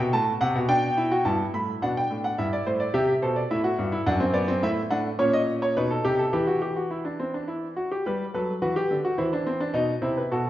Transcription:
grand piano
Already playing: F#4
0.00 B2
0.13 A2 A5
0.41 C3 F#5
0.55 B2
0.69 D4 G5
0.97 E4
1.11 F#4
1.25 G2 E4 A5
1.54 A2 B5
1.82 B2 D4 F#5
1.97 G5
2.10 A2
2.24 F#5
2.38 G2 E4 E5
2.53 D5
2.66 A2 C5
2.80 D5
2.94 C3 G4 E5
3.22 B2 A4 C5
3.36 D5
3.51 A2 E4 E5
3.64 F#4
3.79 G2
3.92 E4
4.06 F#2 D4 F#5
4.20 C4
4.34 B3 D5
4.48 C4
4.63 A2 E4 E5
4.90 A2 D4 F#5
5.19 A#2 C#4 C#5
5.33 D#5
5.62 C#5
5.77 B2 D#4 B4
5.91 A4
6.05 C3 G4
6.19 A4
6.33 E3 E4 G4
6.47 F#4
6.62 G4
6.76 F#4
6.91 E4
7.05 D4
7.20 C4
7.34 D4
7.48 E4
7.76 F#4
7.91 G4
8.06 G3 G4 B4
8.34 F#3 A4 B4
8.62 E3 F#4 B4
8.76 G4
8.91 D3
9.05 F#4
9.18 E3 E4 C5
9.33 D4
9.46 C4
9.60 D4
9.73 B2 D#4 D#5
10.02 C3 E4 C5
10.17 B4
10.31 B2 F#4 A4

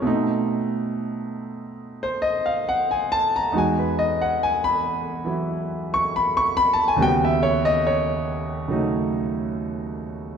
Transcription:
grand piano
0.02 B2 A3 C4
0.07 D#4
2.03 C5
2.22 D#5
2.46 F5
2.69 F#5
2.91 G#5
3.12 A5
3.36 A#5
3.52 E2 G#3 D#4
3.56 F#4 G#5
3.79 B4
3.99 D#5
4.22 F#5
4.43 G#5
4.64 B5
5.25 E3 F#3 E4
5.94 C#6
6.16 B5
6.37 C#6
6.57 B5
6.73 A5
6.88 G#5
6.96 D#2 C#3 G3
7.00 B3 F#4 G5
7.25 E5
7.43 C#5
7.65 D#5
7.87 C#5
8.68 C#3 F#3 A3 D#4

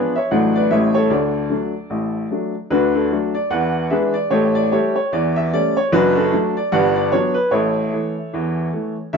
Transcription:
upright piano
Already playing: F3 B3 D4 G#4 B4
0.16 C#5 E5
0.31 A1 A2 F#3 A3 D4 D5 F#5
0.56 B4 D5
0.71 A1 A2 G3 A3 C#4 C#5 E5
0.94 A4 C#5
1.10 D2 D3 A4 D5
1.50 F#3 A3 D4
1.90 A1 A2
2.31 F#3 A3 D4
2.71 D2 D3 D4 F#4 B4
2.94 D4 F#4 A4
3.11 F#3 A3 D4
3.35 D5
3.50 E2 E3 B4 D5 F#5
3.90 E3 G#3 D4 G#4 B4 E5
4.14 D5
4.30 A1 A2 G4 A4 C#5
4.55 D5
4.72 G3 A3 E4 G4 A4 C#5
4.96 C#5
5.12 E2 E3 D5
5.36 E5
5.53 G3 A3 C#4 D5
5.77 C#5
5.92 F#1 F#2 D4 F#4 B4
6.15 D4 F#4 A4
6.32 F#3 A3 D4
6.57 D5
6.72 G1 G2 B4 D5 F#5
6.96 D5
7.12 F#3 B3 D4 C#5
7.34 B4
7.51 A1 A2 E4 A4 C#5
7.93 E3 A3
8.33 E2 E3
8.73 E3 A3
9.13 D2 D3 A4 E5

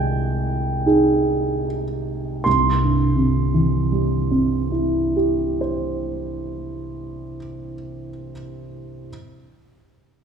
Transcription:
grand piano
Already playing: C2 G#3 G5 G#5
0.86 D#4 G#4
2.44 C2 C6
2.81 G2
3.16 C3
3.54 E3
3.92 G3
4.31 C4
4.72 E4
5.16 G4
5.61 C5

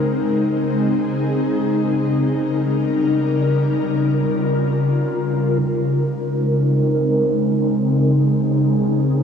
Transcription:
ambient pad
Already playing: C#3 G#3 C4 D#4
0.05 G#4
1.89 C#3 G3 A#4
3.74 F4
5.58 C#3 G#3 C4 D#4 A#4
7.43 G#4

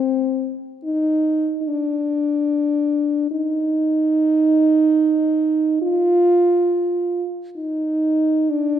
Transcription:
french horn
Already playing: C4
0.84 D#4
1.61 D#4
1.67 D4
3.31 D#4
5.82 F4
7.57 D#4
8.50 D4

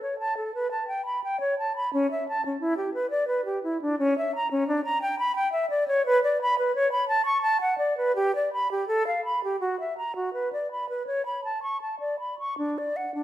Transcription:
flute
0.03 C#5
0.19 A5
0.37 A4
0.54 B4
0.71 A5
0.88 G5
1.06 B5
1.24 G5
1.40 C#5
1.59 A5
1.76 B5
1.93 C#4
2.11 E5
2.28 A5
2.46 C#4
2.60 E4
2.77 G4
2.94 B4
3.10 D5
3.28 B4
3.45 G4
3.63 E4
3.82 D4
3.99 C#4
4.18 E5
4.35 A#5
4.51 C#4
4.68 D4
4.85 A#5
5.02 G5
5.19 B5
5.36 G5
5.52 E5
5.70 D5
5.88 C#5
6.06 B4
6.24 D5
6.41 B5
6.59 B4
6.75 C#5
6.92 B5
7.08 A5
7.25 C#6
7.42 A5
7.61 F#5
7.78 D5
7.97 B4
8.16 G4
8.35 D5
8.53 B5
8.71 G4
8.88 A4
9.07 F5
9.25 B5
9.44 G4
9.60 F#4
9.80 E5
9.98 A#5
10.16 F#4
10.33 B4
10.53 D5
10.71 B5
10.89 B4
11.07 C#5
11.26 B5
11.44 A5
11.63 C#6
11.81 A5
12.00 D5
12.19 B5
12.39 C#6
12.58 D4
12.78 D5
12.96 F#5
13.15 D4

